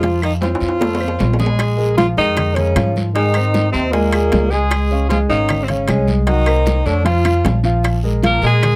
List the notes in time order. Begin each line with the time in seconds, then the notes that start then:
Already playing: F2 F3 F4
0.02 F3 F4, high bongo, high conga, high timbale, long guiro
0.22 D#3 D#4, high conga, high timbale, claves
0.41 F3 C4 F4 C5, high bongo, high conga, high timbale, short guiro
0.55 high timbale
0.60 F2, high bongo, high conga, short guiro
0.69 high timbale
0.80 A3 A4, high bongo, high conga, low timbale, long guiro
0.95 low timbale
1.00 C4 C5, high conga, claves
1.08 low timbale
1.19 A#1, low bongo, high conga, low timbale, short guiro
1.33 low timbale
1.39 G#3 G#4, low bongo, short guiro
1.46 low timbale
1.59 high bongo, high conga, high timbale, long guiro, claves
1.77 G#3 G#4 A#4, high bongo, high conga
1.97 F3 F4 F5, high bongo, high conga, high timbale, short guiro
2.17 F2 D#3 G#3 D#4 G#4 A#4, high bongo, high conga, short guiro
2.37 high bongo, high conga, low conga, high timbale, long guiro, claves
2.55 C#3 G#3 C#4 G#4 A#4, high conga, low conga, high timbale
2.76 G#2 F3 F4 F5, high bongo, low bongo, high conga, high timbale, short guiro, claves
2.96 high bongo, high conga, short guiro
3.14 D#3 G#3 D#4 G#4 G#5, high bongo, high conga, high timbale, long guiro
3.34 C4 C5 D#5, high conga, high timbale, claves
3.54 high bongo, high conga, short guiro
3.71 D#2 C3 C4 C5 D#5, high bongo, high conga, short guiro
3.91 A#2 G#3 A#3 G#4 G#5, high bongo, high conga, high timbale, long guiro
4.12 G#3 G#4 G#5, high bongo, high conga, high timbale, claves
4.32 C#2, high bongo, low bongo, high conga, high timbale, low timbale, short guiro
4.50 G#3 G#4 G#5, high bongo, high conga, short guiro
4.70 high bongo, high conga, high timbale, long guiro, claves
4.91 C#4 C#5 F5, high bongo, high conga
5.09 F3 G#3 F4 G#4 G#5, high bongo, high conga, high timbale, short guiro
5.29 G#1 D#3 C#4 D#4 C#5 F5, high bongo, high conga, short guiro
5.48 high bongo, high conga, low conga, high timbale, long guiro, claves
5.63 C3 C4
5.68 C#3 C#4 C#5 F5, high conga, low conga, high timbale
5.88 C2 G#3 G#4 G#5, high bongo, low bongo, high conga, high timbale, short guiro, claves
6.08 high bongo, high conga, short guiro
6.27 D#3 F#3 D#4 F#4 F#5, high bongo, high timbale, long guiro
6.46 A#3 A#4 C5, high conga, high timbale, claves
6.66 high bongo, high conga, short guiro
6.86 F2 D3 A3 D4 A4 C#5, high bongo, high conga, short guiro
7.05 F3 F4 F5, high bongo, high conga, high timbale, long guiro
7.25 F3 F4 F5, high bongo, high conga, high timbale, claves
7.45 A#1, high bongo, low bongo, high conga, high timbale, low timbale, short guiro
7.64 F3 F4 F5, high bongo, high conga, short guiro
7.83 high bongo, high conga, high timbale, long guiro, claves
8.03 G#3 G#4 A#4, high bongo, high conga
8.23 F3 A#3 F4 A#4 F5, high bongo, high conga, high timbale, short guiro
8.42 A#2 G#3 G#4 A#4, high bongo, high conga, short guiro
8.46 G#4
8.61 high bongo, high conga, low conga, high timbale, long guiro, claves